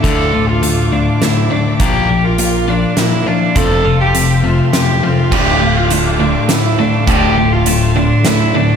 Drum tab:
CC |------|------|------|x-----|
HH |x-x-x-|x-x-x-|x-x-x-|--x-x-|
SD |----o-|----o-|----o-|----o-|
BD |o-----|o-----|o-----|o-----|

CC |------|
HH |x-x-x-|
SD |----o-|
BD |o-----|